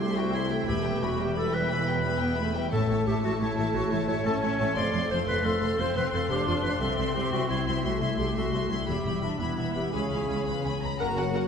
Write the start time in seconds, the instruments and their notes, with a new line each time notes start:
Already playing: cello section C2, double bass section C2, harp C3 G3 C4 G4, viola section A3
0.00 harp E4, clarinet G4, violin section C5 E5 C6
0.16 clarinet F#4, harp G4, violin section C5 E5 G5
0.34 harp C4, clarinet E4, violin section C5 E5 C6
0.51 harp G3, violin section C5 E5 G5
0.68 double bass section E1, cello section E2, timpani E2, harp E3, clarinet G4, violin section B4 E5 B5
0.85 harp E4, violin section B4 E5 G5
1.02 clarinet F#4, harp G4, violin section B4 E5 B5
1.19 viola section G3, clarinet G4, violin section B4 E5 G5, harp B4
1.35 harp E4, clarinet A4, violin section B4 E5 B5
1.53 harp B3, clarinet B4, violin section B4 E5 G5
1.70 viola section E3, clarinet B4, violin section B4 E5 B5
1.87 viola section F#3, harp B3, violin section B4 E5 G5
2.04 viola section G3, harp G4, violin section B4 E5 B5
2.21 viola section B3, harp B4, violin section B4 E5 G5
2.38 viola section A3, harp E4, violin section B4 E5 B5
2.55 viola section G3, harp B3, violin section B4 E5 G5
2.72 double bass section A1, cello section A2, harp A2, timpani A2, viola section A3, clarinet A4, violin section C#5 E5 A5
2.89 double bass section A1, cello section A2, harp C#4, violin section C#5 E5 A5
3.06 double bass section A1, cello section A2, harp E4, clarinet G4, violin section C#5 E5 A5
3.23 double bass section A1, cello section A2, clarinet F#4, harp A4, violin section C#5 E5 A5
3.40 double bass section A1, cello section A2, harp C#4, clarinet E4, violin section C#5 E5 A5
3.57 double bass section A1, cello section A2, harp E3, violin section C#5 E5 A5
3.74 double bass section A1, cello section A2, harp C#4, clarinet F#4, violin section C#5 E5 A5
3.91 double bass section A1, cello section A2, harp E3, clarinet E4, violin section C#5 E5 A5
4.08 double bass section A1, cello section A2, harp E4, clarinet C#5, violin section C#5 E5 A5
4.24 double bass section A1, cello section A2, viola section C#4, harp A4, clarinet A4, violin section C#5 E5 A5
4.41 double bass section A1, cello section A2, harp C#4, clarinet C#5, violin section C#5 E5 A5
4.58 double bass section A1, cello section A2, harp E3, violin section C#5 E5 A5
4.75 double bass section F1, harp F2, cello section F2, viola section A3, violin section C5 F5 C6, clarinet D5
4.92 double bass section F1, cello section F2, harp C4, violin section C5 F5 C6
5.10 double bass section F1, cello section F2, harp F4, clarinet C5, violin section C5 F5 C6
5.27 double bass section F1, cello section F2, harp A4, clarinet B4, violin section C5 F5 C6
5.44 double bass section F1, cello section F2, harp C4, clarinet A4, violin section C5 F5 C6
5.61 double bass section F1, cello section F2, harp C3, violin section C5 F5 C6
5.78 double bass section F1, cello section F2, viola section C4, violin section C5 F5 C6, clarinet C5
5.95 double bass section F1, cello section F2, harp C3, clarinet B4, violin section C5 F5 C6
6.13 double bass section F1, cello section F2, harp F4, clarinet A4, violin section C5 F5 C6
6.30 double bass section F1, cello section F2, viola section D4, clarinet G4, harp A4, violin section C5 F5 C6
6.47 double bass section F1, cello section F2, harp C4, clarinet F4, violin section C5 F5 C6
6.63 double bass section F1, cello section F2, harp C3, clarinet B4, violin section C5 F5 C6
6.80 double bass section C2, cello section C2, harp C3, viola section C4, clarinet A4, violin section E5 C6
6.98 cello section C2, double bass section C2, violin section E5 C6
7.14 double bass section C2, cello section C2, harp E4, clarinet G4, violin section E5 C6
7.32 double bass section C2, cello section C2, clarinet F#4, violin section E5 C6
7.50 double bass section C2, cello section C2, harp C4, clarinet E4, violin section E5 C6
7.67 cello section C2, double bass section C2, harp G3, violin section E5 C6
7.83 double bass section C2, cello section C2, viola section A3, harp C4, clarinet F#4, violin section E5 C6
8.01 cello section C2, double bass section C2, harp G3, clarinet E4, violin section E5 C6
8.18 cello section C2, double bass section C2, harp E4, clarinet G4, violin section E5 C6
8.36 cello section C2, double bass section C2, clarinet F#4, violin section E5 C6
8.53 cello section C2, double bass section C2, harp C4, violin section E5 C6
8.70 cello section C2, double bass section C2, harp G3, clarinet E4, violin section E5 C6
8.87 double bass section E1, timpani E2, cello section E2, harp E3, viola section G3, clarinet G4, violin section E5 B5
9.05 double bass section E1, cello section E2, harp E4, violin section E5 B5
9.22 double bass section E1, cello section E2, clarinet D4, harp G4, violin section E5 B5
9.40 double bass section E1, cello section E2, viola section B3, clarinet E4, harp B4, violin section E5 B5
9.58 double bass section E1, cello section E2, harp E4, violin section E5 B5
9.75 double bass section E1, cello section E2, harp B3, clarinet G4, violin section E5 B5
9.93 cello section C#2, double bass section C#2, harp C#3, viola section C#4, clarinet G#4, violin section F5 G#5 B5
10.11 double bass section C#2, cello section C#2, harp C#4, violin section F5 G#5 B5
10.29 cello section C#2, double bass section C#2, harp F4, violin section F5 G#5 B5
10.46 cello section C#2, double bass section C#2, harp B4, violin section F5 B5
10.64 double bass section C#2, cello section C#2, harp C#4, violin section G#5 B5
10.82 cello section C#2, double bass section C#2, harp G#3, violin section A#5 B5
10.98 double bass section F#1, harp F#2, trombone section C#3 A#3, french horn section A#3, viola section C#4 A#4, cello section F#4, violin section F#5 A#5
11.17 french horn section F#3, viola section C#4 A#4, harp A#4, violin section F#5
11.34 viola section C#4 A#4, harp C#5, violin section F#5